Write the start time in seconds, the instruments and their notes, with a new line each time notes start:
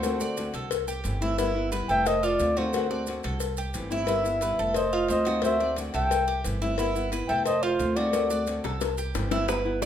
Already playing: upright bass D2, cuban tres F#4, nylon-string guitar A4, muted trumpet C5
0.03 nylon-string guitar D3 A3 C4 F#4, cowbell, maracas
0.19 nylon-string guitar A3 C4 F#4, cuban tres D5, maracas
0.37 nylon-string guitar D3 A3 C4 F#4, cowbell, maracas
0.54 upright bass C2, cuban tres A4, cowbell, maracas
0.71 muted nylon-string guitar stroke, cowbell, maracas
0.88 cuban tres G4, maracas
1.04 upright bass G1, nylon-string guitar E3 A3 C4 E4, cowbell, maracas
1.21 nylon-string guitar E3 A3 C4 E4, cuban tres E4, maracas
1.38 nylon-string guitar G3 B3 E4, cuban tres E4, cowbell, maracas
1.55 nylon-string guitar B3 E4
1.72 nylon-string guitar G3 B3 E4, cuban tres B4, cowbell, maracas
1.89 upright bass F1, cuban tres A4, nylon-string guitar E5, muted trumpet G5, maracas
2.06 nylon-string guitar C5, muted trumpet D#5, muted nylon-string guitar stroke, cowbell, maracas
2.23 cuban tres F4, nylon-string guitar A4, muted trumpet D5, maracas
2.39 upright bass D2, nylon-string guitar D#3 A3 C4 F4, cowbell, maracas
2.57 nylon-string guitar D#3 A3 C4 F4 A4, cuban tres F#4, muted trumpet C5, cowbell, maracas
2.73 nylon-string guitar D3 A3 C4 F#4, cowbell, maracas
2.90 nylon-string guitar A3 C4 F#4, cuban tres D5
3.07 nylon-string guitar D3 A3 C4 F#4, cowbell, maracas
3.23 upright bass C2, cuban tres A4, cowbell, maracas
3.40 muted nylon-string guitar stroke, cowbell, maracas
3.57 cuban tres G4, maracas
3.74 upright bass G1, nylon-string guitar E3 A3 C4 E4, cowbell, maracas
3.90 nylon-string guitar E3 A3 C4 E4, cuban tres E4, maracas
4.07 nylon-string guitar G3 B3 E4 B4, cuban tres E4, muted trumpet E5, cowbell, maracas
4.24 nylon-string guitar B3 E4, maracas
4.41 nylon-string guitar G3 B3 E4, cuban tres B4, cowbell, maracas
4.59 upright bass F1, cuban tres A4, maracas
4.74 nylon-string guitar C5, muted trumpet D#5, muted nylon-string guitar stroke, cowbell, maracas
4.93 cuban tres F4
5.08 upright bass D2, nylon-string guitar D#3 A3 C4 F4 C5, muted trumpet D#5, cowbell, maracas
5.25 nylon-string guitar D#3 A3 C4 F4, cuban tres F#4, cowbell, maracas
5.42 nylon-string guitar D3 A3 C4 F#4 C5, muted trumpet E5, cowbell, maracas
5.60 nylon-string guitar A3 C4 F#4, cuban tres D5
5.76 nylon-string guitar D3 A3 C4 F#4, cowbell, maracas
5.94 upright bass C2, cuban tres A4, nylon-string guitar E5, muted trumpet G5, cowbell, maracas
6.11 muted nylon-string guitar stroke, cowbell, maracas
6.28 cuban tres G4
6.44 upright bass G1, nylon-string guitar E3 A3 C4 E4, cowbell, maracas
6.62 nylon-string guitar E3 A3 C4 E4, cuban tres E4, maracas
6.78 nylon-string guitar G3 B3 E4, cuban tres E4, cowbell, maracas
6.95 nylon-string guitar B3 E4, maracas
7.10 nylon-string guitar G3 B3 E4, cuban tres B4, cowbell, maracas
7.28 upright bass F1, cuban tres A4, nylon-string guitar E5, muted trumpet G5, maracas
7.45 nylon-string guitar C5, muted trumpet D#5, muted nylon-string guitar stroke, cowbell, maracas
7.62 cuban tres F4, nylon-string guitar A4, muted trumpet C5
7.79 upright bass D2, nylon-string guitar D#3 A3 C4 F4, cowbell, maracas
7.96 nylon-string guitar D#3 A3 C4 F4 A4, cuban tres F#4, muted trumpet D5, cowbell, maracas
8.13 nylon-string guitar D3 A3 C4 F#4, cowbell, maracas
8.30 nylon-string guitar A3 C4 F#4, cuban tres D5, maracas
8.46 nylon-string guitar D3 A3 C4 F#4, cowbell, maracas
8.64 upright bass C2, cuban tres A4, cowbell, high bongo, maracas
8.80 muted nylon-string guitar stroke, cowbell, high bongo, maracas
8.98 cuban tres G4, maracas
9.14 upright bass G1, nylon-string guitar E3 A3 C4 E4, cowbell, low bongo, maracas
9.31 nylon-string guitar E3 A3 C4 E4, cuban tres E4, low bongo, maracas
9.48 nylon-string guitar G3 B3 E4, cuban tres B4, high bongo, maracas
9.65 nylon-string guitar B3 E4, high bongo
9.82 cuban tres D5, high bongo